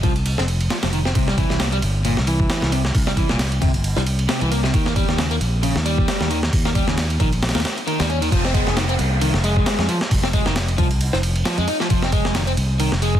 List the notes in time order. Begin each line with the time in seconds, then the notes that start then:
0.03 C2 F3, kick, ride
0.16 ride
0.26 ride
0.38 F1 C4, snare
0.48 ride
0.60 ride
0.70 F3, snare, ride
0.83 F1 F3, snare, ride
0.93 D#3, ride
1.05 C4, snare
1.15 C2 C3, kick, ride
1.28 G3, snare
1.38 E3, kick, ride
1.50 C2, snare
1.60 A#2, snare, ride
1.72 G3, ride
1.82 G1, ride
2.05 A#2, ride
2.17 C2, snare
2.27 E3, ride
2.40 kick
2.50 snare, ride
2.62 C2, snare
2.72 C3, ride
2.85 snare
2.95 C2, kick, open hi-hat
3.07 G3, snare
3.17 E3, kick, ride
3.29 C2 A#2, snare
3.39 snare, ride
3.52 ride
3.62 G1 C3, kick, ride
3.74 ride
3.84 ride
3.97 C2 G3, snare
4.06 ride
4.19 ride
4.29 C3, snare, ride
4.41 C2 E3, ride
4.51 A#3, ride
4.63 C3, snare
4.73 D#2 D#3, kick, ride
4.86 A#3, snare
4.96 G3, kick, ride
5.08 D#2, snare
5.18 C#3, snare, ride
5.31 A#3, ride
5.40 A#1, ride
5.63 C#3, ride
5.75 D#2, snare
5.86 G3, ride
5.98 kick
6.08 snare, ride
6.20 D#2, snare
6.30 D#3, ride
6.43 snare
6.53 D#2, kick, open hi-hat
6.65 A#3, snare
6.75 G3, kick, ride
6.87 D#2 C#3, snare
6.98 snare, ride
7.10 ride
7.20 A#1 D#3, kick, ride
7.33 ride
7.43 snare, ride
7.49 snare, ride
7.55 D#2 A#3, snare, ride
7.60 snare, ride
7.65 snare, ride
7.78 ride
7.87 D#3, ride
7.99 D#2 G3, snare, ride
8.09 C#4, ride
8.22 D#3, ride
8.32 F1 F3, kick, ride, downlifter
8.44 C4, snare
8.54 G#3, kick, ride
8.67 F1, snare
8.77 D#3, snare, ride
8.89 C4, ride
8.99 C2, ride
9.21 D#3, ride
9.34 F1, snare
9.44 G#3, ride
9.56 kick
9.66 snare, ride
9.79 F2, snare
9.89 F3, ride
10.01 snare
10.11 F1, kick, open hi-hat
10.23 C4, snare
10.33 G#3, kick, ride
10.46 F1 D#3, snare
10.56 snare, ride
10.68 ride
10.78 C2 F3, kick, ride
10.91 ride
11.01 ride
11.13 F1 C4, snare
11.23 ride
11.36 ride
11.45 F3, snare, ride
11.58 F2 G#3, ride
11.68 D#4, ride
11.80 F3, snare
11.90 F1 F3, kick, ride
12.02 C4, snare
12.12 G#3, kick, ride
12.25 F1, snare
12.35 D#3, snare, ride
12.47 C4, ride
12.57 C2, ride
12.80 D#3, ride
12.92 F1, snare
13.02 G#3, ride
13.15 kick